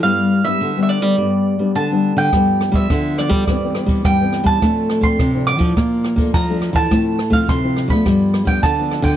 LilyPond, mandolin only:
\new Staff \with { instrumentName = "Mandolin" } { \time 4/4 \key g \mixolydian \tempo 4 = 105 f''8. e''8~ e''32 e''32 d''4. a''8. g''16~ | g''8. e''8. d''4. g''8. a''16~ | a''8. c'''8. d'''4. bes''8. a''16~ | a''8. f''16 c'''8. b''4 g''16 a''8. g''16 | }